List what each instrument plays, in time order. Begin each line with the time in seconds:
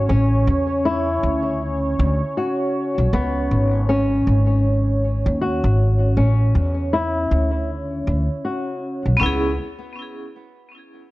Already playing: analog synth pad C#4 C#5
0.09 upright bass A1, nylon-string guitar C#4
0.47 upright bass E2
0.85 nylon-string guitar E4
1.23 upright bass D2
1.99 upright bass D2
2.37 nylon-string guitar F#4
2.98 upright bass B1
3.13 upright bass C#2, nylon-string guitar B3
3.51 upright bass G#1
3.89 nylon-string guitar C#4
4.27 upright bass G#1
5.26 upright bass D#2
5.41 nylon-string guitar F#4
5.64 upright bass G#1
6.17 upright bass A1, nylon-string guitar C#4
6.55 upright bass E2
6.93 nylon-string guitar E4
7.31 upright bass D2
8.07 upright bass D2
8.45 nylon-string guitar F#4
9.06 upright bass B1
9.17 vibraphone B3 C#4
9.21 upright bass C#2, nylon-string guitar B3, vibraphone E4
9.26 vibraphone G#4